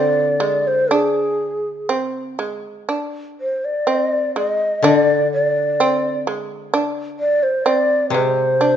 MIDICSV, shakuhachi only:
0, 0, Header, 1, 2, 480
1, 0, Start_track
1, 0, Tempo, 996678
1, 429, Time_signature, 2, 2, 24, 8
1, 1394, Tempo, 972447
1, 2354, Tempo, 940439
1, 4358, End_track
2, 0, Start_track
2, 0, Title_t, "Shakuhachi"
2, 0, Program_c, 0, 77
2, 0, Note_on_c, 0, 74, 78
2, 323, Note_on_c, 0, 72, 70
2, 330, Note_off_c, 0, 74, 0
2, 439, Note_on_c, 0, 68, 59
2, 446, Note_off_c, 0, 72, 0
2, 918, Note_off_c, 0, 68, 0
2, 1646, Note_on_c, 0, 72, 57
2, 1766, Note_on_c, 0, 74, 64
2, 1773, Note_off_c, 0, 72, 0
2, 2113, Note_off_c, 0, 74, 0
2, 2116, Note_on_c, 0, 74, 65
2, 2170, Note_off_c, 0, 74, 0
2, 2170, Note_on_c, 0, 75, 65
2, 2355, Note_on_c, 0, 74, 69
2, 2362, Note_off_c, 0, 75, 0
2, 2599, Note_off_c, 0, 74, 0
2, 2603, Note_on_c, 0, 74, 65
2, 3061, Note_off_c, 0, 74, 0
2, 3556, Note_on_c, 0, 74, 72
2, 3676, Note_on_c, 0, 72, 72
2, 3684, Note_off_c, 0, 74, 0
2, 3789, Note_on_c, 0, 74, 74
2, 3796, Note_off_c, 0, 72, 0
2, 4020, Note_off_c, 0, 74, 0
2, 4023, Note_on_c, 0, 72, 67
2, 4358, Note_off_c, 0, 72, 0
2, 4358, End_track
0, 0, End_of_file